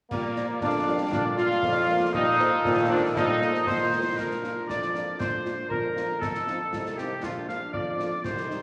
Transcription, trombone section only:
0, 0, Header, 1, 2, 480
1, 0, Start_track
1, 0, Key_signature, -2, "major"
1, 0, Tempo, 508044
1, 112, Time_signature, 2, 2, 24, 8
1, 8147, End_track
2, 0, Start_track
2, 0, Title_t, "Trombone section"
2, 0, Program_c, 0, 61
2, 96, Note_on_c, 0, 58, 107
2, 550, Note_off_c, 0, 58, 0
2, 572, Note_on_c, 0, 62, 100
2, 1027, Note_off_c, 0, 62, 0
2, 1049, Note_on_c, 0, 62, 108
2, 1162, Note_off_c, 0, 62, 0
2, 1287, Note_on_c, 0, 65, 127
2, 1981, Note_off_c, 0, 65, 0
2, 2015, Note_on_c, 0, 63, 127
2, 2705, Note_off_c, 0, 63, 0
2, 2733, Note_on_c, 0, 62, 124
2, 2845, Note_off_c, 0, 62, 0
2, 2977, Note_on_c, 0, 63, 127
2, 3666, Note_off_c, 0, 63, 0
2, 3961, Note_on_c, 0, 53, 60
2, 3964, Note_on_c, 0, 62, 61
2, 5838, Note_off_c, 0, 53, 0
2, 5839, Note_off_c, 0, 62, 0
2, 5876, Note_on_c, 0, 53, 66
2, 5886, Note_on_c, 0, 63, 64
2, 6839, Note_off_c, 0, 63, 0
2, 6843, Note_on_c, 0, 62, 65
2, 7756, Note_off_c, 0, 53, 0
2, 7760, Note_off_c, 0, 62, 0
2, 7788, Note_on_c, 0, 55, 61
2, 7793, Note_on_c, 0, 63, 67
2, 8147, Note_off_c, 0, 55, 0
2, 8147, Note_off_c, 0, 63, 0
2, 8147, End_track
0, 0, End_of_file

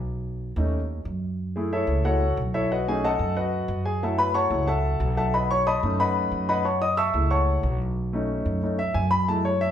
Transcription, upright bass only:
0, 0, Header, 1, 2, 480
1, 0, Start_track
1, 0, Tempo, 328947
1, 105, Time_signature, 4, 2, 24, 8
1, 14173, End_track
2, 0, Start_track
2, 0, Title_t, "Upright bass"
2, 0, Program_c, 0, 32
2, 0, Note_on_c, 0, 35, 89
2, 737, Note_off_c, 0, 35, 0
2, 819, Note_on_c, 0, 39, 98
2, 1492, Note_off_c, 0, 39, 0
2, 1535, Note_on_c, 0, 42, 88
2, 2660, Note_off_c, 0, 42, 0
2, 2729, Note_on_c, 0, 37, 92
2, 3408, Note_off_c, 0, 37, 0
2, 3462, Note_on_c, 0, 35, 94
2, 4584, Note_off_c, 0, 35, 0
2, 4658, Note_on_c, 0, 42, 92
2, 5333, Note_off_c, 0, 42, 0
2, 5372, Note_on_c, 0, 42, 96
2, 6499, Note_off_c, 0, 42, 0
2, 6572, Note_on_c, 0, 37, 93
2, 7250, Note_off_c, 0, 37, 0
2, 7296, Note_on_c, 0, 35, 96
2, 8420, Note_off_c, 0, 35, 0
2, 8505, Note_on_c, 0, 42, 94
2, 9176, Note_off_c, 0, 42, 0
2, 9215, Note_on_c, 0, 42, 92
2, 10339, Note_off_c, 0, 42, 0
2, 10413, Note_on_c, 0, 37, 89
2, 11089, Note_off_c, 0, 37, 0
2, 11136, Note_on_c, 0, 35, 90
2, 12259, Note_off_c, 0, 35, 0
2, 12337, Note_on_c, 0, 42, 88
2, 13011, Note_off_c, 0, 42, 0
2, 13056, Note_on_c, 0, 42, 92
2, 14173, Note_off_c, 0, 42, 0
2, 14173, End_track
0, 0, End_of_file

